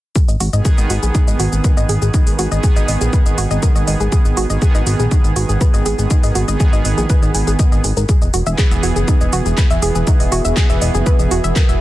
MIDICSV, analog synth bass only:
0, 0, Header, 1, 2, 480
1, 0, Start_track
1, 0, Key_signature, 5, "minor"
1, 0, Tempo, 495868
1, 150, Time_signature, 4, 2, 24, 8
1, 11431, End_track
2, 0, Start_track
2, 0, Title_t, "Analog synth bass"
2, 0, Program_c, 0, 38
2, 275, Note_on_c, 0, 32, 80
2, 352, Note_off_c, 0, 32, 0
2, 391, Note_on_c, 0, 32, 96
2, 473, Note_off_c, 0, 32, 0
2, 515, Note_on_c, 0, 32, 90
2, 592, Note_off_c, 0, 32, 0
2, 755, Note_on_c, 0, 32, 84
2, 832, Note_off_c, 0, 32, 0
2, 871, Note_on_c, 0, 32, 96
2, 953, Note_off_c, 0, 32, 0
2, 995, Note_on_c, 0, 34, 86
2, 1072, Note_off_c, 0, 34, 0
2, 1235, Note_on_c, 0, 32, 84
2, 1312, Note_off_c, 0, 32, 0
2, 1351, Note_on_c, 0, 32, 99
2, 1433, Note_off_c, 0, 32, 0
2, 1475, Note_on_c, 0, 32, 94
2, 1552, Note_off_c, 0, 32, 0
2, 1715, Note_on_c, 0, 32, 85
2, 1791, Note_off_c, 0, 32, 0
2, 1830, Note_on_c, 0, 32, 94
2, 1913, Note_off_c, 0, 32, 0
2, 1955, Note_on_c, 0, 32, 89
2, 2032, Note_off_c, 0, 32, 0
2, 2195, Note_on_c, 0, 32, 83
2, 2272, Note_off_c, 0, 32, 0
2, 2310, Note_on_c, 0, 32, 95
2, 2393, Note_off_c, 0, 32, 0
2, 2435, Note_on_c, 0, 32, 93
2, 2512, Note_off_c, 0, 32, 0
2, 2675, Note_on_c, 0, 32, 87
2, 2752, Note_off_c, 0, 32, 0
2, 2790, Note_on_c, 0, 32, 92
2, 2873, Note_off_c, 0, 32, 0
2, 2915, Note_on_c, 0, 34, 93
2, 2991, Note_off_c, 0, 34, 0
2, 3155, Note_on_c, 0, 32, 91
2, 3231, Note_off_c, 0, 32, 0
2, 3270, Note_on_c, 0, 32, 101
2, 3353, Note_off_c, 0, 32, 0
2, 3394, Note_on_c, 0, 32, 97
2, 3471, Note_off_c, 0, 32, 0
2, 3635, Note_on_c, 0, 32, 82
2, 3711, Note_off_c, 0, 32, 0
2, 3750, Note_on_c, 0, 32, 96
2, 3833, Note_off_c, 0, 32, 0
2, 3875, Note_on_c, 0, 32, 88
2, 3951, Note_off_c, 0, 32, 0
2, 4114, Note_on_c, 0, 32, 85
2, 4191, Note_off_c, 0, 32, 0
2, 4230, Note_on_c, 0, 32, 96
2, 4313, Note_off_c, 0, 32, 0
2, 4355, Note_on_c, 0, 32, 89
2, 4431, Note_off_c, 0, 32, 0
2, 4594, Note_on_c, 0, 32, 91
2, 4671, Note_off_c, 0, 32, 0
2, 4710, Note_on_c, 0, 32, 96
2, 4793, Note_off_c, 0, 32, 0
2, 4835, Note_on_c, 0, 34, 90
2, 4911, Note_off_c, 0, 34, 0
2, 5075, Note_on_c, 0, 32, 83
2, 5151, Note_off_c, 0, 32, 0
2, 5190, Note_on_c, 0, 32, 98
2, 5273, Note_off_c, 0, 32, 0
2, 5314, Note_on_c, 0, 32, 94
2, 5391, Note_off_c, 0, 32, 0
2, 5554, Note_on_c, 0, 32, 88
2, 5631, Note_off_c, 0, 32, 0
2, 5670, Note_on_c, 0, 32, 95
2, 5753, Note_off_c, 0, 32, 0
2, 5795, Note_on_c, 0, 32, 91
2, 5871, Note_off_c, 0, 32, 0
2, 6035, Note_on_c, 0, 32, 83
2, 6111, Note_off_c, 0, 32, 0
2, 6150, Note_on_c, 0, 32, 92
2, 6233, Note_off_c, 0, 32, 0
2, 6274, Note_on_c, 0, 32, 89
2, 6351, Note_off_c, 0, 32, 0
2, 6514, Note_on_c, 0, 32, 89
2, 6591, Note_off_c, 0, 32, 0
2, 6630, Note_on_c, 0, 32, 96
2, 6713, Note_off_c, 0, 32, 0
2, 6754, Note_on_c, 0, 34, 93
2, 6831, Note_off_c, 0, 34, 0
2, 6994, Note_on_c, 0, 32, 87
2, 7071, Note_off_c, 0, 32, 0
2, 7110, Note_on_c, 0, 32, 97
2, 7193, Note_off_c, 0, 32, 0
2, 7234, Note_on_c, 0, 32, 97
2, 7311, Note_off_c, 0, 32, 0
2, 7474, Note_on_c, 0, 32, 84
2, 7551, Note_off_c, 0, 32, 0
2, 7589, Note_on_c, 0, 32, 94
2, 7672, Note_off_c, 0, 32, 0
2, 7714, Note_on_c, 0, 32, 91
2, 7791, Note_off_c, 0, 32, 0
2, 7954, Note_on_c, 0, 28, 85
2, 8031, Note_off_c, 0, 28, 0
2, 8069, Note_on_c, 0, 28, 99
2, 8152, Note_off_c, 0, 28, 0
2, 8194, Note_on_c, 0, 28, 94
2, 8271, Note_off_c, 0, 28, 0
2, 8434, Note_on_c, 0, 28, 86
2, 8511, Note_off_c, 0, 28, 0
2, 8549, Note_on_c, 0, 28, 99
2, 8632, Note_off_c, 0, 28, 0
2, 8674, Note_on_c, 0, 30, 86
2, 8751, Note_off_c, 0, 30, 0
2, 8914, Note_on_c, 0, 28, 91
2, 8991, Note_off_c, 0, 28, 0
2, 9029, Note_on_c, 0, 28, 100
2, 9112, Note_off_c, 0, 28, 0
2, 9154, Note_on_c, 0, 28, 94
2, 9231, Note_off_c, 0, 28, 0
2, 9394, Note_on_c, 0, 28, 83
2, 9471, Note_off_c, 0, 28, 0
2, 9509, Note_on_c, 0, 28, 101
2, 9592, Note_off_c, 0, 28, 0
2, 9634, Note_on_c, 0, 28, 90
2, 9711, Note_off_c, 0, 28, 0
2, 9874, Note_on_c, 0, 28, 86
2, 9951, Note_off_c, 0, 28, 0
2, 9989, Note_on_c, 0, 28, 99
2, 10072, Note_off_c, 0, 28, 0
2, 10114, Note_on_c, 0, 28, 93
2, 10191, Note_off_c, 0, 28, 0
2, 10355, Note_on_c, 0, 28, 90
2, 10431, Note_off_c, 0, 28, 0
2, 10470, Note_on_c, 0, 28, 94
2, 10553, Note_off_c, 0, 28, 0
2, 10594, Note_on_c, 0, 30, 95
2, 10671, Note_off_c, 0, 30, 0
2, 10835, Note_on_c, 0, 28, 89
2, 10911, Note_off_c, 0, 28, 0
2, 10951, Note_on_c, 0, 28, 100
2, 11033, Note_off_c, 0, 28, 0
2, 11075, Note_on_c, 0, 28, 98
2, 11151, Note_off_c, 0, 28, 0
2, 11315, Note_on_c, 0, 28, 87
2, 11392, Note_off_c, 0, 28, 0
2, 11431, End_track
0, 0, End_of_file